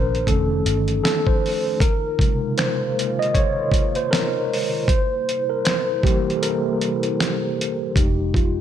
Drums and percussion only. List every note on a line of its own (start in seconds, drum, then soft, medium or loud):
0.15 closed hi-hat soft
0.27 kick medium
0.27 closed hi-hat medium
0.66 closed hi-hat medium
0.88 closed hi-hat soft
1.05 finger snap medium
1.05 snare loud
1.05 closed hi-hat medium
1.27 kick medium
1.46 open hi-hat soft
1.80 kick loud
1.80 closed hi-hat medium
2.19 kick medium
2.19 closed hi-hat medium
2.58 finger snap medium
2.58 snare loud
2.58 closed hi-hat medium
2.99 closed hi-hat medium
3.22 closed hi-hat soft
3.35 kick medium
3.35 closed hi-hat medium
3.72 kick medium
3.72 closed hi-hat medium
3.95 closed hi-hat soft
4.13 finger snap medium
4.13 snare loud
4.13 closed hi-hat medium
4.54 open hi-hat soft
4.88 kick loud
4.88 closed hi-hat medium
5.29 closed hi-hat medium
5.65 finger snap medium
5.65 snare loud
5.65 closed hi-hat medium
6.03 kick medium
6.03 snare soft
6.03 closed hi-hat medium
6.30 closed hi-hat soft
6.43 closed hi-hat medium
6.81 closed hi-hat medium
7.03 closed hi-hat soft
7.20 finger snap medium
7.20 snare loud
7.20 closed hi-hat medium
7.61 closed hi-hat medium
7.96 kick loud
7.96 closed hi-hat medium
8.34 kick medium
8.34 closed hi-hat medium